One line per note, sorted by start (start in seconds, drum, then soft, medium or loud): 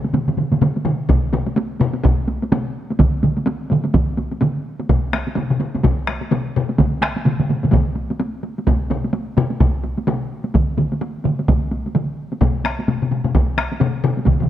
0.04 taiko high soft
0.13 taiko low-mid medium
0.13 taiko mid medium
0.13 taiko high medium
0.28 taiko low-mid medium
0.28 taiko mid medium
0.37 taiko low-mid medium
0.37 taiko mid medium
0.52 taiko low-mid medium
0.52 taiko mid medium
0.52 taiko high medium
0.61 taiko low-mid medium
0.61 taiko mid medium
0.61 taiko high medium
0.76 taiko high soft
0.85 taiko low-mid medium
0.85 taiko mid medium
1.09 taiko loud
1.09 taiko low-mid medium
1.09 taiko high medium
1.33 taiko low-mid loud
1.33 taiko high medium
1.47 taiko high medium
1.56 taiko high medium
1.80 taiko low-mid loud
1.80 taiko high medium
1.94 taiko high medium
2.04 taiko loud
2.04 taiko low-mid medium
2.04 taiko high medium
2.28 taiko high medium
2.42 taiko high medium
2.52 taiko low-mid medium
2.52 taiko high medium
2.90 taiko high medium
2.99 taiko loud
2.99 taiko mid loud
2.99 taiko high medium
3.23 taiko mid medium
3.23 taiko high medium
3.37 taiko high medium
3.46 taiko high medium
3.70 taiko mid loud
3.70 taiko high medium
3.84 taiko high medium
3.94 taiko loud
3.94 taiko mid medium
3.94 taiko high medium
4.17 taiko high medium
4.32 taiko high medium
4.41 taiko mid medium
4.41 taiko high medium
4.80 taiko high medium
4.89 taiko loud
4.89 taiko low-mid medium
4.89 taiko high medium
5.13 taiko rim medium
5.13 taiko high medium
5.27 taiko high medium
5.35 taiko low-mid medium
5.35 taiko high medium
5.51 taiko low-mid medium
5.60 taiko low-mid medium
5.60 taiko high medium
5.75 taiko low-mid medium
5.75 taiko high medium
5.84 taiko medium
5.84 taiko low-mid loud
5.84 taiko high medium
6.07 taiko rim medium
6.07 taiko high medium
6.21 taiko high medium
6.31 taiko low-mid loud
6.31 taiko high medium
6.56 taiko low-mid medium
6.69 taiko high medium
6.78 taiko medium
6.78 taiko low-mid medium
6.78 taiko mid medium
6.78 taiko high medium
7.01 taiko rim medium
7.01 taiko high medium
7.16 taiko high medium
7.26 taiko low-mid medium
7.26 taiko mid medium
7.26 taiko high medium
7.40 taiko low-mid medium
7.40 taiko mid medium
7.49 taiko low-mid medium
7.49 taiko mid medium
7.49 taiko high medium
7.63 taiko low-mid medium
7.63 taiko mid medium
7.63 taiko high medium
7.71 taiko medium
7.71 taiko low-mid loud
7.71 taiko mid loud
7.71 taiko high medium
7.96 taiko high soft
8.10 taiko high medium
8.20 taiko high medium
8.43 taiko high medium
8.58 taiko high soft
8.67 taiko medium
8.67 taiko low-mid medium
8.67 taiko high medium
8.90 taiko low-mid medium
8.90 taiko high medium
9.04 taiko high medium
9.13 taiko high medium
9.37 taiko low-mid loud
9.37 taiko high medium
9.51 taiko high medium
9.60 taiko loud
9.60 taiko low-mid medium
9.60 taiko high medium
9.84 taiko high medium
9.97 taiko high soft
10.07 taiko low-mid loud
10.07 taiko high medium
10.44 taiko high soft
10.54 taiko medium
10.54 taiko mid loud
10.54 taiko high medium
10.77 taiko mid loud
10.77 taiko high soft
10.92 taiko high medium
11.01 taiko high medium
11.24 taiko mid loud
11.24 taiko high medium
11.39 taiko high soft
11.48 taiko loud
11.48 taiko mid loud
11.48 taiko high medium
11.71 taiko high medium
11.86 taiko high soft
11.95 taiko mid medium
11.95 taiko high medium
12.32 taiko high soft
12.41 taiko loud
12.41 taiko low-mid loud
12.41 taiko high medium
12.64 taiko rim medium
12.64 taiko high medium
12.80 taiko high medium
12.88 taiko low-mid medium
12.88 taiko high medium
13.02 taiko low-mid medium
13.11 taiko low-mid medium
13.11 taiko high soft
13.24 taiko low-mid medium
13.24 taiko high soft
13.35 taiko loud
13.35 taiko low-mid loud
13.35 taiko high medium
13.58 taiko rim medium
13.58 taiko high medium
13.72 taiko high medium
13.80 taiko low-mid loud
13.80 taiko high medium
14.04 taiko low-mid loud
14.17 taiko high medium
14.26 taiko medium
14.26 taiko low-mid medium
14.26 taiko mid medium
14.26 taiko high medium
14.40 taiko low-mid medium
14.40 taiko mid medium